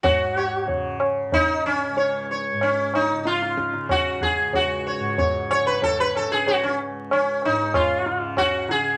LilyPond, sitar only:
\new Staff \with { instrumentName = "Sitar" } { \time 7/4 \key cis \major \tempo 4 = 94 << { r8 cis''8 r2 cis''8 cis''8 r2. | r8 cis''8 cis''8 cis''16 b'16 a'16 b'16 a'16 gis'16 fis'16 cis'16 r2. r8 | } \\ { fis'4. r8 dis'8 cis'4 r8 cis'8 dis'8 eis'4 fis'8 gis'8 | fis'4. r2 r8 cis'8 dis'8 eis'4 fis'8 gis'8 | } >> }